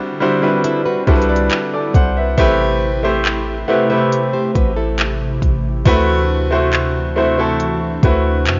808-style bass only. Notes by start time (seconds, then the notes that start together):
1.08 C2
1.95 C2
2.38 A1
4.55 A1
5.42 A1
5.86 D2
8.03 D2
8.46 F#2